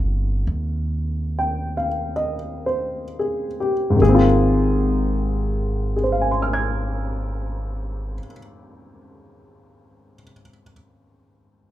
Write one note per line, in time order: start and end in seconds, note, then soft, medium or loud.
0.00 0.44 G1 medium
0.00 3.95 D#3 soft
0.00 4.00 G#3 soft
0.00 4.02 C4 soft
0.00 4.03 F4 soft
0.00 2.10 G#4 medium
0.47 3.96 D#2 medium
1.39 1.86 G5 soft
1.77 2.36 F5 soft
2.16 3.04 D#5 soft
2.66 3.45 C5 soft
3.19 3.71 G#4 soft
3.60 4.25 G4 soft
3.90 8.13 G#2 soft
3.96 8.19 G#1 medium
3.96 8.19 D#3 soft
4.02 8.25 A#3 soft
4.02 5.95 G#4 medium
4.09 8.31 C4 soft
4.15 8.37 F4 medium
5.96 10.15 G#4 soft
6.04 10.22 C5 soft
6.12 10.31 F5 soft
6.21 10.40 G#5 soft
6.31 10.50 C6 soft
6.42 10.61 F6 soft
6.53 10.72 G#6 soft